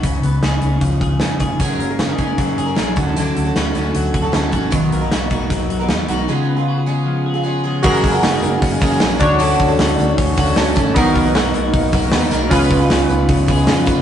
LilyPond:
<<
  \new Staff \with { instrumentName = "Synth keys" } { \time 4/4 \key fis \major \tempo 4 = 154 r1 | r1 | r1 | r1 |
r1 | <fis' gis' ais'>2.~ <fis' gis' ais'>8 <d' fis' cis''>8~ | <d' fis' cis''>1 | <b dis' ais'>1 |
<cis' eis' b'>1 | }
  \new Staff \with { instrumentName = "Clean electric guitar" } { \time 4/4 \key fis \major cis8 b8 gis'8 cis'8 eis8 gis'8 cis'8 gis'8 | fis,8 ais8 fis'16 gis'16 cis'8 fis8 gis'8 cis'8 d8 | d8 a8 fis'8 cis'8 fis8 fis'8 cis'8 fis'8 | b,8 ais8 fis'8 dis'8 fis8 fis'8 dis'8 fis'8 |
cis8 b8 fis'16 gis'16 cis'8 eis8 gis'8 cis'8 gis'8 | <fis, gis'>8 ais8 fis'16 gis'16 ais8 cis'8 gis'8 cis'8 d8 | <d fis'>8 a8 fis'8 a8 cis'8 fis'8 cis'8 a8 | <b, fis'>8 ais8 fis'8 ais8 dis'8 fis'8 dis'8 ais8 |
<cis gis'>8 b8 gis'8 b8 cis'8 gis'8 cis'8 b8 | }
  \new Staff \with { instrumentName = "Twelve-string acoustic guitar" } { \time 4/4 \key fis \major r1 | <fis gis cis' gis' ais'>8. <cis' gis' ais'>8. <gis cis' gis' ais'>4~ <gis cis' gis' ais'>16 <cis' gis' ais'>16 <gis cis' gis' ais'>8 <a cis' fis' a'>8 | <d a cis' fis' a'>8. <cis' fis' a'>8. <a cis' fis' a'>4~ <a cis' fis' a'>16 <cis' fis' a'>16 <a cis' fis' a'>8 <a cis' fis' a'>8 | <b, dis fis b dis' ais'>8. <fis b dis' ais'>8. <fis b dis' ais'>4~ <fis b dis' ais'>16 <fis b dis' ais'>16 <fis b dis' ais'>8 <fis b dis' ais'>8 |
<cis gis b eis' gis'>8. <b eis' gis'>8. <gis b eis' gis'>4~ <gis b eis' gis'>16 <b eis' gis'>16 <gis b eis' gis'>8 <gis b eis' gis'>8 | <fis gis cis' fis' ais'>8. <cis' fis' ais'>4.~ <cis' fis' ais'>16 <gis cis' fis' ais'>8 <gis cis' fis' ais'>8 <a cis' fis' a'>8 | <d a cis' fis' a'>8. <cis' fis' a'>4.~ <cis' fis' a'>16 <a cis' fis' a'>8 <a cis' fis' a'>8 <a cis' fis' a'>8 | <b, dis fis b dis' ais'>8. <fis b dis' ais'>4.~ <fis b dis' ais'>16 <fis b dis' ais'>8 <fis b dis' ais'>8 <fis b dis' ais'>8 |
<cis gis b eis' b'>8. <b eis' b'>4.~ <b eis' b'>16 <gis b eis' b'>8 <gis b eis' b'>8 <gis b eis' b'>8 | }
  \new Staff \with { instrumentName = "Fingered electric bass" } { \clef bass \time 4/4 \key fis \major cis,8 cis,8 cis,8 cis,8 cis,8 cis,8 eis,8 eis,,8 | fis,,8 fis,,8 fis,,8 fis,,8 fis,,8 fis,,8 ais,,8 d,8~ | d,8 d,8 d,8 d,8 d,8 d,8 d,8 a,,8 | b,,8 b,,8 b,,8 b,,8 b,,8 b,,8 dis,8 b,,8 |
r1 | fis,,8 fis,,8 fis,,8 fis,,8 fis,,8 fis,,8 ais,,8 d,8~ | d,8 d,8 d,8 d,8 d,8 d,8 d,8 a,,8 | b,,8 b,,8 b,,8 b,,8 b,,8 b,,8 dis,8 b,,8 |
cis,8 cis,8 cis,8 cis,8 cis,8 cis,8 eis,8 eis,,8 | }
  \new DrumStaff \with { instrumentName = "Drums" } \drummode { \time 4/4 <hh bd>8 hh8 <hh sn>8 hh8 <hh bd>8 <hh bd>8 <hh sn>8 <hh bd>8 | <hh bd>8 hh8 <hh sn>8 <hh bd>8 <hh bd sn>8 hh8 <hh sn>8 <hh bd>8 | hh8 hh8 <hh sn>8 hh8 hh8 <hh bd>8 <hh sn>8 <hh bd>8 | <hh bd>8 hh8 <hh sn>8 <hh bd>8 <hh bd sn>8 hh8 <hh sn>8 hh8 |
r4 r4 r4 r4 | <cymc bd>8 <hho hhp bd>8 <hho hhp sn>8 <hho hhp>8 <hho hhp bd sn>8 <hho hhp bd>8 <hho hhp sn>8 <hho hhp bd>8 | <hho hhp>8 <hho hhp bd>8 <hho hhp sn>8 <hho hhp>8 <hho hhp bd sn>8 <hho hhp bd>8 <hho hhp sn>8 <hho hhp bd>8 | <hho hhp bd>8 <hho hhp bd>8 <hho hhp sn>8 <hho hhp>8 <hho hhp bd>8 <hho hhp bd>8 <hho hhp sn>8 <hho hhp>8 |
<hho hhp bd>8 <hho hhp bd>8 <hho hhp sn>8 <hho hhp>8 <hho hhp bd sn>8 <hho hhp bd>8 <hho hhp sn>8 <hho hhp bd>8 | }
>>